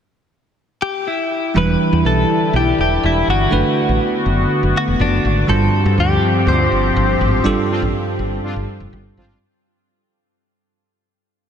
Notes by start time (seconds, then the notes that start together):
0.82 G4
1.07 E4
1.54 E1 D3 E3 G3 D4 E4 B4
1.93 E2
2.05 B1 A4
2.53 B1 G4
2.78 E1 G4
3.04 E1 E4
3.28 G1 F#4
3.51 F#1 A3 B3 D4 F#4 B4
3.89 A1
4.26 F#1
4.63 F#1
4.77 F#4
4.88 E1
5.00 F#1 D4
5.25 G#1
5.47 G1 G2 F3 G3 C4 D4 F4 G4 A4 C5
5.86 G2
5.98 D2 G4
6.47 D2 C5
6.72 G1
6.96 G1
7.21 G#1
7.44 G1 G2 G3 D4 F4 A4
7.70 C4 D4 F4
7.82 A1
8.19 G1
8.44 C4 D4 F4
8.56 G1
8.80 F1
8.93 G1
9.17 G#1 C4 D4 F4